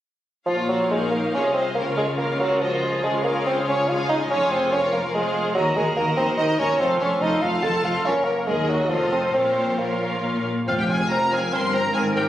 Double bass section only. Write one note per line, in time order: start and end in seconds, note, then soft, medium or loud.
0.49 1.30 A#1 soft
1.35 1.76 C2 soft
1.77 3.03 C#2 soft
3.04 4.27 C#2 soft
4.30 5.55 F1 soft
5.55 5.63 D#2 medium
5.76 5.84 D#2 medium
5.96 6.04 D#2 soft
6.17 6.25 D#2 medium
6.37 6.45 D#2 soft
6.58 6.66 D#2 medium
6.80 6.88 F1 medium
6.99 7.07 F1 medium
7.21 7.29 F1 soft
7.42 7.50 F1 soft
7.63 7.71 F1 soft
7.84 7.92 F1 soft
8.05 8.45 F#1 soft
8.47 8.91 D#2 soft
8.91 9.35 F1 soft
9.35 10.45 A#1 soft
10.68 11.49 F1 soft
11.53 11.95 G1 soft
11.95 12.29 G#1 medium